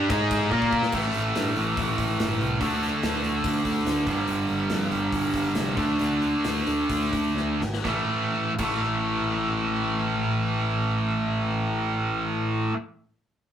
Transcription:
0.00 0.10 D4 medium
0.00 0.11 G4 loud
0.10 0.49 G#2 loud
0.10 0.52 G#3 medium
0.10 0.53 D#4 loud
0.10 0.54 G#4 loud
0.10 kick loud
0.10 ride loud
0.31 kick medium
0.31 ride medium
0.52 0.90 A#2 medium
0.52 0.93 A#3 medium
0.52 0.93 F4 medium
0.52 0.94 A#4 loud
0.52 kick medium
0.62 kick medium
0.72 kick medium
0.83 snare medium
0.92 1.09 A1 medium
0.92 2.59 A2 medium
0.92 2.60 E3 medium
0.92 2.61 A3 medium
0.92 kick medium
0.92 crash medium
1.14 1.31 A1 medium
1.14 open hi-hat soft
1.35 1.52 G2 medium
1.35 snare loud
1.35 open hi-hat medium
1.56 1.73 A1 medium
1.56 open hi-hat soft
1.77 1.93 A1 medium
1.77 kick loud
1.77 open hi-hat medium
1.98 2.14 A1 medium
1.98 kick medium
1.98 open hi-hat soft
2.20 2.36 G1 medium
2.20 snare loud
2.20 open hi-hat medium
2.41 2.56 C2 medium
2.41 open hi-hat soft
2.60 2.92 D2 medium
2.60 4.07 D3 medium
2.60 4.07 A3 medium
2.60 kick loud
2.60 open hi-hat medium
2.65 5.79 D4 medium
2.83 open hi-hat soft
3.03 3.19 D2 medium
3.03 snare loud
3.03 open hi-hat medium
3.23 3.39 D2 medium
3.23 open hi-hat medium
3.44 3.60 D2 medium
3.44 kick loud
3.44 open hi-hat medium
3.65 3.81 D2 medium
3.65 kick medium
3.65 open hi-hat soft
3.86 4.02 D2 medium
3.86 snare loud
3.86 open hi-hat medium
4.07 4.23 G1 medium
4.07 5.77 G2 medium
4.07 5.75 D3 medium
4.07 kick medium
4.07 open hi-hat soft
4.11 5.77 G3 medium
4.28 4.44 G1 medium
4.28 open hi-hat medium
4.49 4.65 G1 medium
4.49 open hi-hat soft
4.70 4.87 F2 medium
4.70 snare medium
4.70 open hi-hat medium
4.91 5.08 G1 medium
4.91 open hi-hat soft
5.12 5.29 G1 medium
5.12 kick loud
5.12 open hi-hat medium
5.34 5.50 G1 medium
5.34 kick medium
5.34 open hi-hat soft
5.55 5.73 F1 medium
5.55 snare loud
5.55 open hi-hat medium
5.76 5.94 D2 medium
5.76 7.59 D3 medium
5.76 7.60 A3 medium
5.76 7.61 D4 medium
5.76 kick loud
5.76 open hi-hat soft
5.99 6.34 D2 medium
5.99 open hi-hat medium
6.22 open hi-hat soft
6.44 6.62 D2 medium
6.44 snare medium
6.44 open hi-hat medium
6.67 6.85 D2 medium
6.67 open hi-hat soft
6.89 7.07 D2 medium
6.89 kick medium
6.89 open hi-hat medium
7.12 7.31 D2 medium
7.12 kick medium
7.12 open hi-hat soft
7.36 7.55 D2 medium
7.36 snare medium
7.61 7.79 G#1 medium
7.61 snare medium
7.74 snare medium
7.85 7.99 A1 medium
7.85 8.52 A2 medium
7.85 8.52 E3 medium
7.85 kick medium
7.85 snare medium
7.89 8.52 A3 medium
8.58 12.68 A1 medium
8.58 12.72 A2 medium
8.58 12.75 E3 medium
8.58 kick medium
8.58 crash medium
8.64 12.77 A3 loud

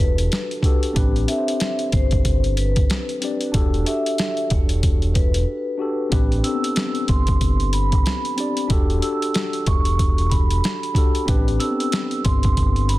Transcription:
0.00 0.28 E1 loud
0.00 0.62 D4 medium
0.00 0.63 F#4 medium
0.00 0.65 G4 medium
0.00 0.66 A4 loud
0.00 0.91 B4 medium
0.18 closed hi-hat medium
0.32 snare loud
0.32 closed hi-hat medium
0.51 closed hi-hat soft
0.62 0.90 D4 medium
0.62 0.91 F#4 medium
0.62 0.92 G4 medium
0.62 kick loud
0.62 closed hi-hat medium
0.66 0.92 A4 medium
0.83 closed hi-hat medium
0.93 1.25 A1 loud
0.93 1.22 C4 medium
0.93 1.23 D4 medium
0.93 1.24 G4 medium
0.93 kick loud
0.93 closed hi-hat medium
0.97 1.24 B4 medium
1.16 closed hi-hat soft
1.28 2.35 C4 medium
1.28 2.36 D4 medium
1.28 2.37 G4 medium
1.28 1.89 E5 medium
1.28 closed hi-hat medium
1.32 1.38 A4 medium
1.38 2.41 C5 medium
1.48 closed hi-hat medium
1.60 snare loud
1.60 closed hi-hat medium
1.79 closed hi-hat soft
1.92 2.86 G1 medium
1.92 2.53 C5 medium
1.92 kick loud
1.92 closed hi-hat medium
2.11 kick loud
2.11 closed hi-hat medium
2.25 kick medium
2.25 closed hi-hat loud
2.44 closed hi-hat soft
2.57 3.50 B4 medium
2.57 closed hi-hat medium
2.76 kick loud
2.76 closed hi-hat medium
2.90 snare loud
2.90 closed hi-hat medium
3.09 closed hi-hat soft
3.21 3.49 C4 medium
3.21 3.49 D4 medium
3.21 3.50 G4 medium
3.21 3.51 D5 medium
3.21 closed hi-hat medium
3.41 closed hi-hat soft
3.52 3.83 E1 loud
3.52 3.80 D4 medium
3.52 3.81 F#4 medium
3.52 3.82 G4 medium
3.52 kick loud
3.52 closed hi-hat medium
3.56 3.82 A4 loud
3.74 closed hi-hat soft
3.85 4.93 D4 medium
3.85 4.94 F#4 medium
3.85 4.94 G4 medium
3.85 4.47 E5 medium
3.85 closed hi-hat medium
3.89 4.95 A4 medium
4.06 closed hi-hat medium
4.18 snare loud
4.18 closed hi-hat medium
4.37 closed hi-hat soft
4.50 5.44 E1 loud
4.50 5.11 C#5 medium
4.50 kick loud
4.50 closed hi-hat medium
4.69 closed hi-hat medium
4.83 kick medium
4.83 closed hi-hat loud
5.02 closed hi-hat soft
5.14 6.08 B4 medium
5.14 kick medium
5.14 closed hi-hat medium
5.34 closed hi-hat medium
5.78 6.06 D4 medium
5.78 6.07 F#4 medium
5.78 6.08 G4 medium
5.82 6.08 A4 medium
6.10 6.41 A1 loud
6.10 6.38 C4 medium
6.10 6.39 D4 medium
6.10 6.40 G4 medium
6.10 kick loud
6.10 closed hi-hat medium
6.14 6.40 B4 medium
6.32 closed hi-hat soft
6.44 7.52 C4 medium
6.44 7.52 D4 medium
6.44 7.53 G4 medium
6.44 6.54 A4 medium
6.44 7.05 E6 medium
6.44 closed hi-hat medium
6.54 7.57 B3 medium
6.64 closed hi-hat medium
6.76 snare loud
6.76 closed hi-hat loud
6.95 closed hi-hat soft
7.08 8.02 G1 medium
7.08 7.70 C6 medium
7.08 kick medium
7.08 closed hi-hat medium
7.27 kick loud
7.27 closed hi-hat medium
7.41 kick medium
7.41 closed hi-hat loud
7.60 closed hi-hat soft
7.73 8.66 B5 medium
7.73 closed hi-hat medium
7.92 kick loud
7.92 closed hi-hat medium
8.06 snare loud
8.06 closed hi-hat medium
8.25 closed hi-hat soft
8.36 8.64 C4 medium
8.36 8.65 D4 medium
8.36 8.66 G4 medium
8.36 closed hi-hat medium
8.40 8.67 D5 medium
8.57 closed hi-hat medium
8.68 8.99 E1 loud
8.68 8.96 D4 medium
8.68 8.97 F#4 medium
8.68 8.98 G4 medium
8.68 kick loud
8.68 closed hi-hat medium
8.72 8.99 A4 loud
8.90 closed hi-hat soft
9.00 10.09 D4 medium
9.00 10.10 F#4 medium
9.00 10.10 G4 medium
9.00 9.63 E6 medium
9.00 closed hi-hat medium
9.04 10.11 A4 medium
9.22 closed hi-hat medium
9.34 snare loud
9.34 closed hi-hat loud
9.53 closed hi-hat soft
9.66 10.60 E1 loud
9.66 10.28 C#6 medium
9.66 kick loud
9.66 closed hi-hat medium
9.85 closed hi-hat medium
9.99 kick loud
9.99 closed hi-hat loud
10.18 closed hi-hat soft
10.30 11.23 B5 medium
10.30 kick medium
10.30 closed hi-hat medium
10.51 closed hi-hat medium
10.64 snare loud
10.64 closed hi-hat medium
10.83 closed hi-hat soft
10.94 11.22 D4 medium
10.94 11.23 F#4 medium
10.94 11.24 G4 medium
10.94 kick loud
10.94 closed hi-hat medium
10.98 11.25 A4 medium
11.15 closed hi-hat soft
11.26 11.57 A1 loud
11.26 11.54 C4 medium
11.26 11.55 D4 medium
11.26 11.56 G4 medium
11.26 kick loud
11.26 closed hi-hat medium
11.30 11.56 B4 loud
11.48 closed hi-hat soft
11.60 12.68 C4 medium
11.60 12.68 D4 medium
11.60 12.69 G4 medium
11.60 12.21 E6 medium
11.60 closed hi-hat medium
11.64 11.70 A4 medium
11.70 12.73 B3 medium
11.80 closed hi-hat medium
11.92 snare loud
11.92 closed hi-hat loud
12.11 closed hi-hat soft
12.24 12.99 G1 medium
12.24 12.85 C6 medium
12.24 kick loud
12.24 closed hi-hat medium
12.43 kick loud
12.43 closed hi-hat medium
12.57 kick loud
12.57 closed hi-hat loud
12.76 closed hi-hat soft
12.89 12.99 B5 medium
12.89 closed hi-hat medium

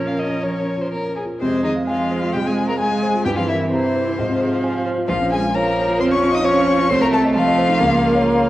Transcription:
0.00 0.41 A#2 soft
0.00 1.17 F3 soft
0.00 0.60 C#4 soft
0.00 1.20 C#4 soft
0.00 0.27 F4 soft
0.00 0.93 A#4 soft
0.07 0.21 F5 soft
0.11 0.37 A#4 soft
0.19 0.45 D#5 soft
0.27 0.54 F4 soft
0.43 0.70 F3 soft
0.43 0.83 C#5 soft
0.60 0.86 C#4 soft
0.77 1.03 F4 soft
0.81 0.92 C5 soft
0.92 1.19 C#4 soft
0.92 1.16 A#4 soft
1.09 1.35 A#4 soft
1.16 1.24 G#4 soft
1.25 1.41 F4 soft
1.40 2.31 F2 soft
1.40 1.62 C3 soft
1.40 1.84 G#3 soft
1.40 1.62 C4 soft
1.40 1.63 C5 medium
1.52 1.71 C4 soft
1.63 1.72 D#3 soft
1.63 1.71 D#4 soft
1.63 1.83 G#4 soft
1.63 1.73 D#5 medium
1.76 1.94 F5 soft
1.87 2.35 F3 soft
1.87 2.78 G#3 soft
1.87 2.32 F4 soft
1.87 2.34 F5 medium
1.87 2.06 G#5 soft
1.99 2.17 F5 soft
2.11 2.29 C5 soft
2.22 2.41 F4 soft
2.32 2.52 C3 soft
2.32 2.44 G3 medium
2.32 2.37 G4 medium
2.32 2.48 G5 medium
2.45 2.68 G#3 soft
2.45 2.64 C4 soft
2.45 2.67 G#4 soft
2.45 2.68 G#5 medium
2.57 2.75 G#4 soft
2.68 2.79 A#3 soft
2.68 2.72 A#4 soft
2.68 2.87 F5 soft
2.68 2.78 A#5 medium
2.79 3.26 G#3 soft
2.79 3.25 G#3 medium
2.79 3.24 G#4 medium
2.79 3.24 G#5 medium
2.79 2.98 G#5 soft
2.91 3.10 F5 soft
3.03 3.21 C5 soft
3.14 3.26 F4 soft
3.25 4.15 G2 soft
3.25 3.70 E3 soft
3.25 3.30 G3 medium
3.25 3.38 G4 medium
3.25 3.30 G5 medium
3.36 3.48 F3 soft
3.36 3.56 C4 soft
3.36 3.50 F4 soft
3.36 3.48 F5 medium
3.48 3.73 E3 medium
3.48 3.71 E4 soft
3.48 3.67 A#4 soft
3.48 3.57 E5 medium
3.60 3.79 E5 soft
3.71 4.86 C3 soft
3.71 4.19 E3 soft
3.71 4.83 C4 medium
3.71 4.84 C5 medium
3.71 3.90 A#5 soft
3.84 4.02 E5 soft
3.96 4.14 C5 soft
4.07 4.18 E4 soft
4.17 5.06 G#2 soft
4.17 5.07 F3 soft
4.29 4.47 C4 soft
4.41 4.59 G#4 soft
4.52 4.70 F5 soft
4.64 4.81 G#5 soft
4.75 4.93 F5 soft
4.86 5.04 C5 soft
4.98 5.09 F4 soft
5.08 5.97 A#1 medium
5.08 5.16 F3 medium
5.08 5.53 F3 soft
5.08 5.16 F4 medium
5.08 5.30 F5 medium
5.20 5.39 C#4 soft
5.31 5.56 G#3 medium
5.31 5.50 F4 soft
5.31 5.40 G#4 medium
5.31 5.56 G#5 medium
5.43 5.61 F5 soft
5.54 6.43 F3 medium
5.54 6.01 A#3 medium
5.54 6.00 A#4 medium
5.54 5.73 C#5 soft
5.54 6.00 A#5 medium
5.66 5.84 F5 soft
5.77 5.95 C#5 soft
5.88 6.06 F4 soft
5.99 6.17 F2 soft
5.99 6.12 C4 medium
5.99 6.13 C5 medium
5.99 6.05 C6 medium
6.11 6.29 C#4 soft
6.11 6.33 C#4 medium
6.11 6.32 C#5 medium
6.11 6.36 C#6 medium
6.22 6.40 F4 soft
6.33 6.44 D#4 medium
6.33 6.46 D#5 medium
6.33 6.52 F5 soft
6.33 6.47 D#6 medium
6.45 6.92 F3 medium
6.45 6.89 C#4 medium
6.45 6.89 C#5 medium
6.45 6.63 C#5 medium
6.45 6.92 C#6 medium
6.56 6.74 F5 soft
6.67 6.86 C#5 medium
6.79 6.90 F4 soft
6.90 7.77 C2 medium
6.90 7.34 A3 medium
6.90 6.95 C4 medium
6.90 7.03 C5 medium
6.90 7.01 C6 loud
7.01 7.14 A#3 medium
7.01 7.20 C4 soft
7.01 7.13 A#4 medium
7.01 7.07 A#5 medium
7.12 7.37 A3 medium
7.12 7.35 A4 medium
7.12 7.31 A4 medium
7.12 7.21 A5 medium
7.24 7.42 D#5 medium
7.35 8.48 F3 medium
7.35 7.82 A3 medium
7.35 8.46 F4 medium
7.35 8.46 F5 medium
7.35 7.53 A5 medium
7.46 7.64 D#5 medium
7.58 7.76 C5 medium
7.69 7.80 D#4 medium
7.80 8.49 C#2 medium
7.80 8.49 A#3 medium
7.92 8.10 A#3 soft
8.03 8.21 A#4 medium
8.14 8.32 C#5 medium
8.26 8.44 A#5 medium
8.37 8.49 C#5 medium

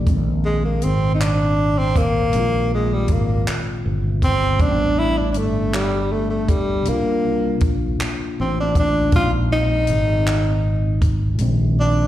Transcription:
0.03 2.27 A#2 medium
0.03 2.29 G#3 medium
0.07 0.79 A#1 medium
0.07 2.31 C4 medium
0.07 kick medium
0.07 closed hi-hat medium
0.13 2.32 D#3 medium
0.45 0.62 G#3 medium
0.65 0.85 A#3 medium
0.82 2.30 G#1 medium
0.82 1.14 C4 medium
0.82 closed hi-hat medium
1.15 1.23 D#4 medium
1.21 1.80 D4 medium
1.21 clap medium
1.21 closed hi-hat medium
1.78 1.99 C4 medium
1.96 2.72 A#3 loud
1.96 kick medium
1.96 closed hi-hat medium
2.28 4.53 A#2 medium
2.33 3.05 A#1 loud
2.33 4.55 G#3 medium
2.33 4.57 C4 soft
2.33 closed hi-hat medium
2.40 4.59 F4 medium
2.74 2.95 G#3 medium
2.94 3.14 G3 medium
3.08 3.43 G#1 medium
3.08 kick medium
3.08 closed hi-hat medium
3.12 3.48 A#3 medium
3.47 clap medium
3.47 closed hi-hat medium
3.85 4.56 G1 medium
4.22 4.63 C4 loud
4.22 kick medium
4.22 closed hi-hat medium
4.56 6.80 A2 medium
4.56 6.82 G3 soft
4.56 closed hi-hat medium
4.60 5.37 A1 medium
4.60 6.84 B3 medium
4.60 5.00 D4 loud
4.60 kick loud
4.66 4.69 C#4 medium
4.73 6.88 D4 medium
4.99 5.19 E4 medium
5.18 5.29 D4 medium
5.32 5.39 D4 medium
5.32 closed hi-hat medium
5.37 6.83 G1 medium
5.37 5.74 A3 medium
5.73 6.13 G3 medium
5.73 clap loud
5.73 closed hi-hat medium
6.12 6.29 A3 medium
6.30 6.51 A3 medium
6.49 6.90 G3 medium
6.49 kick medium
6.49 closed hi-hat medium
6.82 9.06 C3 medium
6.82 9.08 A#3 medium
6.82 closed hi-hat medium
6.88 7.62 C2 medium
6.88 7.63 A#3 medium
6.88 9.10 D4 medium
6.93 9.12 F4 medium
7.61 7.96 A#1 medium
7.61 kick loud
7.61 closed hi-hat medium
8.00 muted fretless electric bass stroke soft
8.00 clap medium
8.00 closed hi-hat medium
8.40 9.10 A1 medium
8.40 8.56 C4 medium
8.60 8.76 D4 medium
8.75 9.12 D4 medium
8.75 kick medium
8.75 closed hi-hat medium
9.08 11.33 A#2 medium
9.08 11.35 G#3 medium
9.08 closed hi-hat medium
9.13 9.84 A#1 medium
9.13 11.37 C4 medium
9.13 9.32 F4 loud
9.13 kick loud
9.19 11.38 D#4 medium
9.52 11.36 D#4 loud
9.87 11.36 G#1 medium
9.87 closed hi-hat medium
10.27 clap loud
10.27 closed hi-hat medium
11.02 kick loud
11.02 closed hi-hat medium
11.34 12.07 A#2 medium
11.34 12.07 G#3 medium
11.39 12.07 A#1 medium
11.39 12.07 C4 medium
11.39 closed hi-hat medium
11.45 12.07 D#3 medium
11.80 12.07 D4 medium

